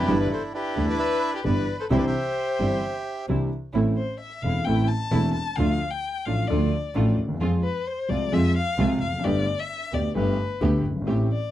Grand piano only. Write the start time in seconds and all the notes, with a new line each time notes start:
0.02 F#2
0.08 G1 G2 E3 B3 D4 G4
0.76 D2 D3 E3 B3 D4 G4
1.44 G1 G2 E3 B3 D4 G4
1.90 C2 C3 E3 C4 D4 G4
2.59 G1 G2 E3 C4 D4 G4
3.29 C2 C3 E3 C4 D4 G4
3.74 A1 A2 E3 A3 C4 A4
4.44 E1 E2 E3 A3 C4 A4
4.66 A1 A2 E3 A3 C4 A4
5.11 E1 E2 E3 A3 C4 A4
5.57 D2 D3 F3 A3 D4 A4
6.26 A1 A2 F3 A3 D4 A4
6.50 D2 D3 F3 A3 D4 A4
6.94 A1 A2 F3 A3 D4 A4
7.24 D2
7.29 D#2
7.34 E2
7.41 F2 F3 G#3 C4 G#4
8.09 C2 C3 F3 G#3 C4 G#4
8.32 F2 F3 G#3 C4 G#4
8.78 C2 C3 F3 G#3 C4 G#4
9.07 E2
9.13 F2
9.19 F#2
9.24 G1 G2 D3 A3 B3 G4
9.93 D2 D3 A3 B3 G4
10.15 G1 G2 D3 A3 B3 G4
10.61 D2 D3 A3 B3 G4
10.91 F#1
10.96 G1
11.01 G#1
11.07 A1 A2 E3 A3 C4 G4